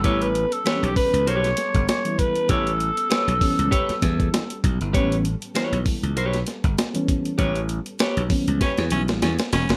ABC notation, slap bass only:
X:1
M:4/4
L:1/16
Q:"Swing 16ths" 1/4=98
K:A
V:1 name="Slap bass" clef=bass
A,,,3 z2 B,,, z C,, B,,,2 z =G,,, z4 | A,,,3 z2 B,,, z C,, z2 E,,2 z2 B,,, =G,,, | A,,,3 z2 B,,, z C,, B,,,2 z =G,,, z4 | A,,,3 z2 B,,, z C,, z E,, B,,, A,,, E,, z E,,, F,,, |]